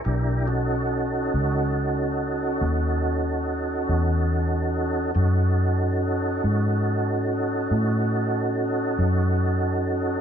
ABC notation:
X:1
M:12/8
L:1/8
Q:3/8=47
K:B
V:1 name="Tonewheel organ"
[=DE=GA] [C^DF=A]8- [CDFA]3 | [CDF=A]12 |]
V:2 name="Fingered electric bass" clef=bass
B,,,3 C,,3 D,,3 E,,3 | F,,3 G,,3 =A,,3 F,,3 |]